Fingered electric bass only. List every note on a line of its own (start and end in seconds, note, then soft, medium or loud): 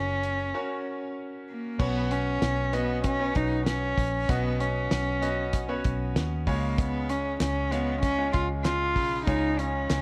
0.00 0.51 F#1 medium
1.80 2.38 B1 loud
2.42 3.32 B1 loud
3.36 3.94 B1 loud
3.97 4.27 A#1 loud
4.29 4.87 B1 loud
4.92 5.81 B1 loud
5.85 6.14 B1 loud
6.16 6.45 D#2 medium
6.47 7.37 C#2 loud
7.41 8.30 C#2 loud
8.35 8.96 C#2 loud
8.96 9.26 B1 loud
9.28 9.86 C#2 loud
9.90 10.02 C#2 loud